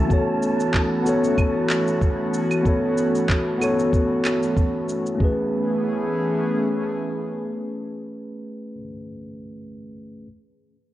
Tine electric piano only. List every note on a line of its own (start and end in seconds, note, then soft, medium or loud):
0.00 0.12 A3 medium
0.00 0.10 F#4 medium
0.00 0.12 E5 loud
0.00 0.12 G#5 medium
0.08 1.01 B3 medium
0.08 1.02 F#4 medium
0.12 1.03 A4 medium
0.12 1.04 C#5 medium
1.03 2.60 B3 medium
1.03 2.61 F#4 medium
1.07 2.63 A4 medium
1.07 2.63 C#5 medium
2.63 3.56 B3 medium
2.63 3.57 F#4 medium
2.63 3.58 A4 medium
2.69 3.59 C#5 medium
3.58 5.16 B3 medium
3.58 5.17 F#4 medium
3.58 5.18 A4 medium
3.64 5.19 C#5 medium
5.16 8.74 A3 medium
5.16 8.76 C#4 medium
5.22 8.80 G#4 medium
5.22 8.83 B4 medium